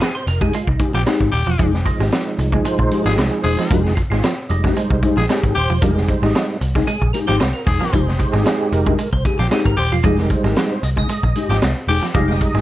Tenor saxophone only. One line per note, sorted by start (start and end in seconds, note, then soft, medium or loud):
0.94 1.02 G4 medium
1.32 1.67 G4 medium
3.06 3.14 G#4 medium
3.44 3.78 G#4 loud
5.17 5.25 G#4 medium
5.55 5.72 G4 loud
7.27 7.35 G4 medium
7.67 8.01 G#4 medium
9.39 9.47 G4 medium
9.77 9.94 G4 loud
11.50 11.57 G4 medium
11.88 12.05 G4 loud